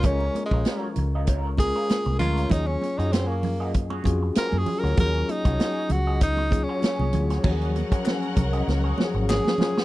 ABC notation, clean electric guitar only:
X:1
M:4/4
L:1/16
Q:"Swing 16ths" 1/4=97
K:Ebdor
V:1 name="Clean electric guitar"
[FBd] z2 [FBd] [FBd] z2 [FBe] [FBd] z2 [FBd] z2 [FBd] [FBd] | [GAd] z2 [GAd] [GAd] z2 [GAe] z [GAd] z2 [GAd] z2 [GAd] | [GAd] z2 [GAd] [GAd] z2 [GAe] z3 [GAd] [GAd] z2 [GAd] | [GAd] z2 [GAd] [GAd] z2 [GAe] z [GAd] z2 [GAd] z2 [GAd] |]